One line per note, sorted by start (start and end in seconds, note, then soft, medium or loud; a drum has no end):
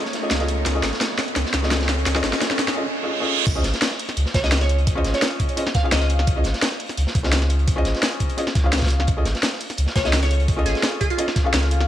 0.00 2.73 A3 medium
0.00 0.62 D#4 medium
0.00 2.73 C#5 medium
0.00 riser medium
0.05 snare soft
0.13 snare soft
0.13 closed hi-hat medium
0.22 0.38 C#4 medium
0.22 0.38 F4 medium
0.22 0.38 G#4 medium
0.22 0.38 A4 medium
0.22 0.38 D#5 medium
0.31 0.65 C#2 medium
0.31 snare loud
0.31 snare medium
0.31 closed hi-hat medium
0.40 0.73 C#4 medium
0.40 0.73 F4 medium
0.40 0.73 G#4 medium
0.40 0.73 A4 medium
0.40 0.73 D#5 loud
0.40 snare soft
0.40 closed hi-hat soft
0.48 closed hi-hat medium
0.65 0.82 C#2 loud
0.65 2.74 C#4 medium
0.65 snare medium
0.65 closed hi-hat medium
0.75 0.82 C#4 medium
0.75 0.82 F4 medium
0.75 0.82 G#4 medium
0.75 0.82 A4 medium
0.75 0.82 D#5 medium
0.83 0.92 G#1 medium
0.83 snare medium
0.83 snare soft
0.83 closed hi-hat medium
0.93 snare medium
0.93 closed hi-hat soft
1.01 snare loud
1.01 snare medium
1.01 closed hi-hat loud
1.01 closed hi-hat medium
1.10 snare soft
1.18 snare medium
1.18 closed hi-hat medium
1.18 open hi-hat medium
1.28 closed hi-hat soft
1.36 1.45 C#2 loud
1.36 snare medium
1.36 closed hi-hat medium
1.36 closed hi-hat loud
1.45 snare medium
1.53 2.05 C#2 loud
1.53 snare medium
1.53 closed hi-hat medium
1.62 2.13 C#4 medium
1.62 2.13 F4 medium
1.62 2.13 G#4 medium
1.62 2.14 A4 medium
1.62 2.14 D#5 medium
1.62 snare medium
1.71 snare loud
1.71 snare medium
1.71 closed hi-hat loud
1.81 snare medium
1.81 closed hi-hat soft
1.89 snare medium
1.89 closed hi-hat medium
1.98 closed hi-hat soft
2.06 2.22 C#2 loud
2.06 snare medium
2.06 closed hi-hat medium
2.15 2.74 C#4 loud
2.15 2.74 F4 medium
2.15 2.75 G#4 medium
2.15 2.75 A4 medium
2.15 2.75 D#5 loud
2.15 snare medium
2.23 2.32 G#1 medium
2.23 snare soft
2.23 snare loud
2.23 closed hi-hat medium
2.33 snare medium
2.33 closed hi-hat soft
2.41 snare medium
2.41 snare loud
2.41 closed hi-hat loud
2.41 closed hi-hat medium
2.51 snare medium
2.51 closed hi-hat soft
2.59 snare loud
2.59 closed hi-hat medium
2.68 snare medium
2.68 closed hi-hat soft
2.76 2.81 C#4 medium
2.76 2.81 F4 medium
2.76 2.81 G#4 medium
2.76 2.81 A4 medium
2.76 2.81 D#5 loud
2.76 reverse cymbal medium
3.03 3.18 C#4 medium
3.03 3.19 F4 medium
3.03 3.19 G#4 medium
3.03 3.19 A4 medium
3.03 3.19 D#5 medium
3.20 3.45 C#4 medium
3.20 3.46 F4 medium
3.20 3.46 G#4 medium
3.20 3.46 A4 medium
3.20 3.46 D#5 loud
3.47 3.63 C#2 loud
3.47 kick loud
3.47 closed hi-hat medium
3.47 crash loud
3.55 3.62 C#4 medium
3.55 3.63 F4 medium
3.55 3.63 G#4 medium
3.55 3.63 C5 medium
3.55 3.63 D#5 medium
3.63 3.73 G#1 medium
3.63 snare medium
3.63 closed hi-hat medium
3.74 snare medium
3.74 closed hi-hat soft
3.82 snare loud
3.82 closed hi-hat loud
3.82 closed hi-hat medium
3.91 snare soft
3.99 closed hi-hat medium
3.99 open hi-hat medium
4.09 snare soft
4.09 closed hi-hat soft
4.17 4.25 C#2 loud
4.17 closed hi-hat medium
4.17 closed hi-hat loud
4.26 snare soft
4.34 4.86 C#2 loud
4.34 4.42 C#5 medium
4.34 kick loud
4.34 snare medium
4.34 closed hi-hat medium
4.43 4.94 C#4 medium
4.43 4.94 F4 medium
4.43 4.94 G#4 medium
4.43 4.94 C5 medium
4.43 4.59 D#5 medium
4.43 4.95 D#5 medium
4.43 snare medium
4.43 snare soft
4.52 snare loud
4.52 closed hi-hat loud
4.52 closed hi-hat medium
4.61 4.82 C#5 medium
4.61 snare medium
4.61 snare soft
4.61 closed hi-hat soft
4.69 closed hi-hat medium
4.78 closed hi-hat soft
4.87 5.03 C#2 loud
4.87 kick loud
4.87 closed hi-hat medium
4.95 5.55 C#4 loud
4.95 5.55 F4 medium
4.95 5.55 G#4 medium
4.95 5.56 C5 medium
4.95 5.56 D#5 loud
5.05 5.13 G#1 medium
5.05 snare soft
5.05 closed hi-hat medium
5.13 5.35 C#5 medium
5.13 snare soft
5.13 closed hi-hat soft
5.22 snare loud
5.22 closed hi-hat medium
5.40 kick medium
5.40 closed hi-hat medium
5.49 closed hi-hat soft
5.57 5.62 C#4 medium
5.57 5.62 F4 medium
5.57 5.62 G#4 medium
5.57 5.62 C5 medium
5.57 5.62 D#5 loud
5.57 closed hi-hat loud
5.57 closed hi-hat medium
5.66 snare soft
5.66 snare medium
5.74 5.91 F5 medium
5.74 kick loud
5.74 snare soft
5.74 closed hi-hat medium
5.83 6.34 C#4 medium
5.83 6.34 F4 medium
5.83 6.34 G#4 medium
5.83 6.35 C5 medium
5.83 6.35 F5 loud
5.91 6.26 C#2 medium
5.91 5.98 D#5 medium
5.91 snare loud
5.91 closed hi-hat medium
5.91 closed hi-hat loud
6.01 6.07 D#5 medium
6.01 snare soft
6.01 closed hi-hat soft
6.09 closed hi-hat medium
6.19 snare medium
6.27 6.43 C#2 loud
6.27 kick loud
6.27 closed hi-hat medium
6.36 6.43 C#4 medium
6.36 6.43 F4 medium
6.36 6.43 G#4 medium
6.36 6.44 C5 medium
6.36 6.44 D#5 medium
6.44 6.53 G#1 medium
6.44 snare medium
6.44 closed hi-hat medium
6.54 snare medium
6.54 closed hi-hat soft
6.62 snare loud
6.62 closed hi-hat medium
6.71 snare soft
6.79 closed hi-hat medium
6.79 open hi-hat medium
6.89 snare soft
6.89 closed hi-hat soft
6.97 7.06 C#2 loud
6.97 closed hi-hat medium
7.07 snare medium
7.15 7.66 C#2 loud
7.15 kick loud
7.15 closed hi-hat medium
7.23 7.74 C#4 medium
7.23 7.74 F4 medium
7.23 7.75 G#4 medium
7.23 7.75 C5 medium
7.23 7.75 D#5 medium
7.23 snare medium
7.23 snare soft
7.32 snare loud
7.32 closed hi-hat medium
7.32 closed hi-hat loud
7.41 snare medium
7.41 snare soft
7.41 closed hi-hat soft
7.50 closed hi-hat medium
7.59 closed hi-hat soft
7.68 7.84 C#2 loud
7.68 kick loud
7.68 closed hi-hat medium
7.76 8.35 C#4 loud
7.76 8.36 F4 medium
7.76 8.36 G#4 medium
7.76 8.36 C5 medium
7.76 8.36 D#5 loud
7.85 7.94 G#1 medium
7.85 snare soft
7.85 closed hi-hat medium
7.95 snare soft
7.95 closed hi-hat soft
8.03 snare loud
8.03 closed hi-hat medium
8.12 closed hi-hat soft
8.20 kick medium
8.20 closed hi-hat medium
8.29 closed hi-hat soft
8.37 8.42 C#4 medium
8.37 8.42 F4 medium
8.37 8.43 G#4 medium
8.37 8.43 C5 medium
8.37 8.43 D#5 loud
8.37 closed hi-hat medium
8.47 snare soft
8.47 snare medium
8.55 kick loud
8.55 snare soft
8.55 closed hi-hat medium
8.64 9.07 C#2 medium
8.64 9.07 C#4 medium
8.64 9.07 F4 medium
8.64 9.07 G#4 medium
8.64 9.07 C5 medium
8.64 9.08 F5 loud
8.72 snare loud
8.72 snare medium
8.72 closed hi-hat medium
8.77 snare loud
8.77 closed hi-hat medium
8.82 kick medium
8.82 snare medium
8.82 closed hi-hat soft
8.82 closed hi-hat medium
8.86 snare loud
8.86 closed hi-hat medium
8.90 closed hi-hat medium
9.00 snare medium
9.07 9.24 C#2 loud
9.07 kick loud
9.07 closed hi-hat medium
9.17 9.24 C#4 medium
9.17 9.24 F4 medium
9.17 9.24 G#4 medium
9.17 9.24 A4 medium
9.17 9.24 D#5 medium
9.25 9.34 G#1 medium
9.25 snare medium
9.25 closed hi-hat medium
9.35 snare medium
9.35 closed hi-hat soft
9.43 snare loud
9.43 closed hi-hat medium
9.43 closed hi-hat loud
9.53 snare soft
9.60 closed hi-hat medium
9.60 open hi-hat medium
9.70 snare soft
9.70 closed hi-hat soft
9.77 9.87 C#2 loud
9.77 closed hi-hat medium
9.86 snare medium
9.96 10.47 C#2 loud
9.96 10.03 C#5 medium
9.96 kick loud
9.96 snare loud
9.96 closed hi-hat medium
10.04 10.55 C#4 medium
10.04 10.55 F4 medium
10.04 10.55 G#4 medium
10.04 10.56 A4 medium
10.04 10.21 D#5 medium
10.04 10.56 D#5 medium
10.04 snare medium
10.04 snare soft
10.13 snare loud
10.13 closed hi-hat medium
10.23 10.43 C#5 medium
10.23 snare medium
10.23 snare soft
10.23 closed hi-hat soft
10.31 closed hi-hat medium
10.40 closed hi-hat soft
10.48 10.64 C#2 loud
10.48 kick loud
10.48 closed hi-hat medium
10.56 11.16 C#4 loud
10.56 11.16 F4 medium
10.56 11.16 G#4 medium
10.56 11.17 A4 medium
10.56 11.17 D#5 loud
10.66 10.74 G#1 medium
10.66 10.87 G#4 medium
10.66 snare soft
10.66 closed hi-hat medium
10.75 snare soft
10.75 closed hi-hat soft
10.83 snare loud
10.83 closed hi-hat medium
11.01 11.08 G#4 medium
11.01 kick medium
11.01 closed hi-hat medium
11.10 11.46 F4 medium
11.10 closed hi-hat soft
11.18 11.23 C#4 medium
11.18 11.23 F4 medium
11.18 11.23 G#4 medium
11.18 11.23 A4 medium
11.18 11.24 D#5 loud
11.18 closed hi-hat medium
11.28 snare soft
11.28 snare medium
11.36 kick loud
11.36 snare soft
11.36 closed hi-hat medium
11.44 11.88 C#4 medium
11.44 11.88 F4 medium
11.44 11.88 G#4 medium
11.44 11.88 A4 medium
11.44 11.88 F5 loud
11.53 11.87 C#2 medium
11.53 snare loud
11.53 closed hi-hat loud
11.53 closed hi-hat medium
11.63 snare soft
11.63 closed hi-hat soft
11.71 closed hi-hat medium
11.81 snare medium